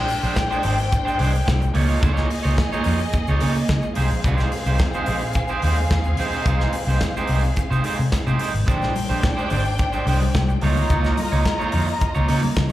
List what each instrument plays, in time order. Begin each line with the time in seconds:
Already playing: string section D4 C5 G5
0.08 muted clean electric guitar stroke, open hi-hat, shaker
0.23 fingered electric bass A#1, clean electric guitar G#3 D4 G4 C5, shaker
0.36 muted clean electric guitar stroke, kick, snare, closed hi-hat, shaker
0.51 clean electric guitar G#3 D4 G4 C5, shaker
0.63 fingered electric bass G#1, clean electric guitar G#3 D4 G4 C5, open hi-hat
0.78 muted clean electric guitar stroke, shaker
0.91 muted clean electric guitar stroke, kick, closed hi-hat, shaker
1.05 clean electric guitar G#3 D4 G4 C5, shaker
1.18 fingered electric bass C2, clean electric guitar G#3 D4 G4 C5, open hi-hat, shaker
1.33 muted clean electric guitar stroke, shaker
1.46 fingered electric bass C2, muted clean electric guitar stroke, kick, snare, closed hi-hat, shaker
1.61 muted clean electric guitar stroke, shaker
1.74 fingered electric bass C#2, clean electric guitar A#3 D#4 F4 C#5, string section A#3 G#4 D#5, open hi-hat, shaker
1.87 clean electric guitar A#3 D#4 F4 C#5, shaker
2.01 fingered electric bass C#2, clean electric guitar A3 D4 E4 C5, kick, closed hi-hat, shaker
2.12 clean electric guitar A#3 D#4 F4 C#5
2.17 snare, shaker
2.29 muted clean electric guitar stroke, open hi-hat, shaker
2.43 fingered electric bass C#2, clean electric guitar A#3 D#4 F4 C#5, shaker
2.57 kick, snare, closed hi-hat, shaker
2.72 clean electric guitar A#3 D#4 F4 C#5, shaker
2.84 fingered electric bass F2, clean electric guitar A#3 D#4 F4 C#5, open hi-hat
2.99 muted clean electric guitar stroke, shaker
3.13 muted clean electric guitar stroke, kick, closed hi-hat, shaker
3.27 fingered electric bass C#2, clean electric guitar A#3 D#4 F4 C#5, shaker
3.40 fingered electric bass C#3, clean electric guitar A#3 D#4 F4 C#5, open hi-hat, shaker
3.55 muted clean electric guitar stroke, shaker
3.68 fingered electric bass C#3, muted clean electric guitar stroke, kick, snare, closed hi-hat, shaker
3.82 muted clean electric guitar stroke, shaker
3.95 fingered electric bass C2, clean electric guitar G#3 D#4 G4 C5, string section C4 G#4 F5, open hi-hat, shaker
4.10 fingered electric bass A#1, muted clean electric guitar stroke, shaker
4.24 fingered electric bass C2, clean electric guitar G3 D4 F#4 B4, kick, shaker
4.35 clean electric guitar G#3 D#4 G4 C5, shaker
4.39 snare
4.52 muted clean electric guitar stroke, open hi-hat, shaker
4.66 fingered electric bass C2, clean electric guitar G#3 D#4 G4 C5, shaker
4.78 muted clean electric guitar stroke, kick, snare, closed hi-hat, shaker
4.94 clean electric guitar G#3 D#4 G4 C5, shaker
5.06 fingered electric bass A#1, clean electric guitar G#3 D#4 G4 C5, open hi-hat
5.20 muted clean electric guitar stroke, shaker
5.33 muted clean electric guitar stroke, kick, closed hi-hat, shaker
5.48 clean electric guitar G#3 D#4 G4 C5, shaker
5.62 fingered electric bass D#2, clean electric guitar G#3 D#4 G4 C5, open hi-hat, shaker
5.76 muted clean electric guitar stroke, shaker
5.90 fingered electric bass D#2, muted clean electric guitar stroke, kick, snare, closed hi-hat, shaker
6.04 muted clean electric guitar stroke, shaker
6.17 fingered electric bass A#1, clean electric guitar G#3 D#4 G4 C5, open hi-hat, shaker
6.33 clean electric guitar G#3 D#4 G4 C5, shaker
6.46 fingered electric bass C2, clean electric guitar G#3 D#4 G4 C5, kick, closed hi-hat, shaker
6.60 snare, shaker
6.73 muted clean electric guitar stroke, open hi-hat, shaker
6.87 fingered electric bass C2, clean electric guitar G#3 D#4 G4 C5, shaker
7.01 muted clean electric guitar stroke, kick, snare, closed hi-hat, shaker
7.17 clean electric guitar G#3 D#4 G4 C5, shaker
7.27 fingered electric bass C2, clean electric guitar G#3 D#4, open hi-hat
7.32 clean electric guitar G4 C5
7.43 muted clean electric guitar stroke, shaker
7.56 muted clean electric guitar stroke, kick, closed hi-hat, shaker
7.70 fingered electric bass C3, clean electric guitar G#3 D#4 G4 C5, shaker
7.84 clean electric guitar G#3 D#4 G4 C5, open hi-hat, shaker
7.99 fingered electric bass C3, muted clean electric guitar stroke, shaker
8.12 muted clean electric guitar stroke, kick, snare, closed hi-hat, shaker
8.27 fingered electric bass C3, clean electric guitar G#3 D#4 G4 C5, shaker
8.39 clean electric guitar G#3 D#4 G4 C5, open hi-hat, shaker
8.53 fingered electric bass G#1, muted clean electric guitar stroke, shaker
8.66 fingered electric bass A#1, clean electric guitar G#3 D4 G4 C5, string section D4 C5 G5, kick, closed hi-hat, low conga, shaker
8.82 snare, muted conga, shaker
8.95 muted clean electric guitar stroke, open hi-hat, high conga, shaker
9.09 fingered electric bass A#1, clean electric guitar G#3 D4 G4 C5, shaker
9.23 muted clean electric guitar stroke, kick, snare, closed hi-hat, shaker
9.37 clean electric guitar G#3 D4 G4 C5, shaker
9.50 fingered electric bass G#1, clean electric guitar G#3 D4 G4 C5, open hi-hat, low conga
9.65 muted clean electric guitar stroke, shaker
9.78 muted clean electric guitar stroke, kick, closed hi-hat, muted conga, shaker
9.93 clean electric guitar G#3 D4 G4 C5, muted conga, shaker
10.07 fingered electric bass C2, clean electric guitar G#3 D4 G4 C5, open hi-hat, shaker
10.21 muted clean electric guitar stroke, high conga, shaker
10.34 fingered electric bass C2, muted clean electric guitar stroke, kick, snare, closed hi-hat, high conga, shaker
10.49 muted clean electric guitar stroke, shaker
10.61 fingered electric bass C#2, clean electric guitar A#3 D#4 F4 C#5, string section F4 D#5 A#5, open hi-hat, high conga, shaker
10.76 clean electric guitar A#3 D#4 F4 C#5, low conga, shaker
10.90 fingered electric bass C#2, clean electric guitar A#3 D#4 F4 C#5, kick, closed hi-hat, muted conga, low conga, shaker
11.04 snare, shaker
11.17 muted clean electric guitar stroke, open hi-hat, high conga, shaker
11.32 fingered electric bass C#2, clean electric guitar A#3 D#4 F4 C#5, shaker
11.45 muted clean electric guitar stroke, kick, snare, closed hi-hat, muted conga, shaker
11.59 clean electric guitar A#3 D#4 F4 C#5, muted conga, shaker
11.72 fingered electric bass F2, clean electric guitar A#3 D#4 F4 C#5, open hi-hat, low conga
11.88 muted clean electric guitar stroke, shaker
12.01 muted clean electric guitar stroke, kick, closed hi-hat, muted conga, shaker
12.15 fingered electric bass C#2, clean electric guitar A#3 D#4 F4 C#5, muted conga, shaker
12.28 fingered electric bass C#3, clean electric guitar A#3 D#4 F4 C#5, open hi-hat, shaker
12.42 muted clean electric guitar stroke, high conga, shaker
12.56 fingered electric bass C#3, muted clean electric guitar stroke, kick, snare, closed hi-hat, muted conga, high conga, shaker